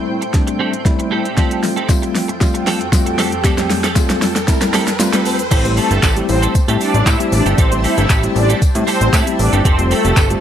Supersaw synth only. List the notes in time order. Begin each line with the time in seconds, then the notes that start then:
5.51 C4 C5
5.77 A3 A4
6.29 C4 C5
6.81 D4 D5
7.07 E4 E5
7.32 D4 D5
7.58 C4 C5
7.84 E4 E5
8.36 D4 D5
8.87 C4 C5
9.13 E4 E5
9.39 D4 D5
9.65 C4 C5
9.91 A3 A4